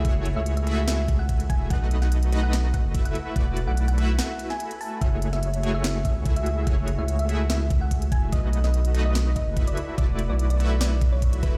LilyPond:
<<
  \new Staff \with { instrumentName = "Synth pluck" } { \time 4/4 \key fis \minor \tempo 4 = 145 e''8 r16 e''8 e''8 r16 e''8 r16 fis''8 r16 gis''8 | fis''8 r16 fis''8. r16 fis''8 r16 fis''8 r16 fis''8 r16 | fis''8 r16 fis''8 fis''8 r16 fis''8 r16 gis''8 r16 a''8 | e''8 r16 e''8. r16 e''8 r16 e''8 r16 e''8 r16 |
e''8 r16 e''8 e''8 r16 e''8 r16 fis''8 r16 gis''8 | dis''8 r16 dis''8. r16 dis''8 r16 dis''8 r16 d''8 r16 | d''8 r16 d''8 d''8 r16 d''8 r16 cis''8 r16 b'8 | }
  \new Staff \with { instrumentName = "Supersaw synth" } { \time 4/4 \key fis \minor <a e' fis' gis' cis''>4. <a e' fis' gis' e''>2~ <a e' fis' gis' e''>8 | <a dis' fis' b' dis''>4. <a dis' fis' b' dis''>4. <a e' fis' b' e''>4 | <a e' fis' b' d''>4. <a e' fis' b' e''>2~ <a e' fis' b' e''>8 | <a e' fis' gis' cis''>4. <a e' fis' gis' cis''>4. <a e' fis' gis' e''>4 |
<a e' fis' gis' cis''>4. <a e' fis' gis' e''>2~ <a e' fis' gis' e''>8 | <a dis' fis' b' dis''>4. <a dis' fis' b' dis''>4. <a e' fis' b' e''>4 | <a e' fis' b' d''>4. <a e' fis' b' e''>2 <a e' fis' b' e''>16 r16 | }
  \new Staff \with { instrumentName = "Sub bass" } { \clef bass \time 4/4 \key fis \minor fis,,8. cis,2~ cis,8. e,,8 | b,,2~ b,,8 r16 fis,,8. r8 | e,,8. b,,4~ b,,16 r2 | fis,,2~ fis,,8 r16 cis,4~ cis,16 |
fis,,8. cis,2~ cis,8. e,,8 | b,,2~ b,,8 r16 fis,,8. r8 | e,,8. b,,2~ b,,8. d,,8 | }
  \new DrumStaff \with { instrumentName = "Drums" } \drummode { \time 4/4 <hh bd>8 hh8 hh16 hh16 hh8 <hh sn>8 <hh bd>8 <hh bd>16 hh16 <hh bd>8 | <hh bd>8 hh16 sn16 hh16 hh16 hh8 <hh sn>8 <hh bd>8 <hh bd>16 hh16 hh8 | <hh bd>8 hh8 hh16 hh16 hh8 <hh sn>8 hh16 sn16 hh16 hh16 hho8 | <hh bd>8 hh16 sn16 hh16 hh16 hh8 <hh sn>8 <hh bd>8 <hh bd>16 hh16 hh8 |
<hh bd>8 hh8 hh16 hh16 hh8 <hh sn>8 <hh bd>8 <hh bd>16 hh16 <hh bd>8 | <hh bd>8 hh16 sn16 hh16 hh16 hh8 <hh sn>8 <hh bd>8 <hh bd>16 hh16 hh8 | <hh bd>8 hh8 hh16 hh16 hh8 <hh sn>8 <hh bd>8 <hh bd>16 hh16 <hh bd>8 | }
>>